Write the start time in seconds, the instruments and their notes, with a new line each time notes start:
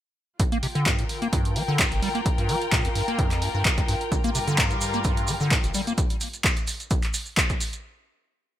0.40 acid bass G2, string section F4, kick, closed hi-hat
0.52 acid bass A#3, closed hi-hat
0.56 string section G5
0.63 acid bass C3, open hi-hat
0.75 acid bass D3, closed hi-hat
0.86 acid bass G2, kick, clap, closed hi-hat
0.98 acid bass A#2, string section A#4, closed hi-hat
1.09 open hi-hat
1.22 acid bass A#3, closed hi-hat
1.32 acid bass G2, kick, closed hi-hat
1.45 closed hi-hat
1.56 acid bass F3, open hi-hat
1.68 acid bass D3
1.79 acid bass G2, kick, clap, closed hi-hat
1.92 acid bass G1, closed hi-hat
2.02 acid bass G3, open hi-hat
2.15 acid bass A#3, closed hi-hat
2.26 kick, closed hi-hat
2.38 acid bass G2, closed hi-hat
2.49 acid bass F3, open hi-hat
2.62 closed hi-hat
2.72 acid bass A#2, kick, clap, closed hi-hat
2.85 acid bass F2, closed hi-hat
2.95 acid bass G2, open hi-hat
3.08 acid bass A#3, closed hi-hat
3.19 acid bass F2, kick, closed hi-hat
3.31 clap, closed hi-hat
3.42 acid bass G2, open hi-hat
3.54 acid bass G2
3.65 acid bass G2, kick, clap, closed hi-hat
3.78 acid bass F2, kick, closed hi-hat
3.88 acid bass G2, open hi-hat
4.01 closed hi-hat
4.12 acid bass G2, string section G2 G3 F4 A#4, kick, closed hi-hat, maracas
4.24 acid bass A#3, closed hi-hat, maracas
4.35 acid bass C3, open hi-hat, maracas
4.47 acid bass D3, closed hi-hat, maracas
4.58 acid bass G2, kick, clap, closed hi-hat, maracas
4.70 acid bass A#2, closed hi-hat, maracas
4.81 open hi-hat, maracas
4.93 acid bass A#3, closed hi-hat, maracas
5.04 acid bass G2, kick, closed hi-hat, maracas
5.17 closed hi-hat, maracas
5.27 acid bass F3, open hi-hat, maracas
5.40 acid bass D3, maracas
5.51 acid bass G2, kick, clap, closed hi-hat, maracas
5.64 acid bass G1, closed hi-hat, maracas
5.74 acid bass G3, open hi-hat, maracas
5.87 acid bass A#3, closed hi-hat, maracas
5.98 kick, closed hi-hat, maracas
6.10 closed hi-hat, maracas
6.21 open hi-hat, maracas
6.33 closed hi-hat, maracas
6.44 kick, clap, closed hi-hat, maracas
6.57 closed hi-hat, maracas
6.67 open hi-hat, maracas
6.80 closed hi-hat, maracas
6.91 kick, closed hi-hat, maracas
7.02 clap, closed hi-hat, maracas
7.14 open hi-hat, maracas
7.26 maracas
7.37 kick, clap, closed hi-hat, maracas
7.49 kick, closed hi-hat, maracas
7.60 open hi-hat, maracas
7.73 closed hi-hat, maracas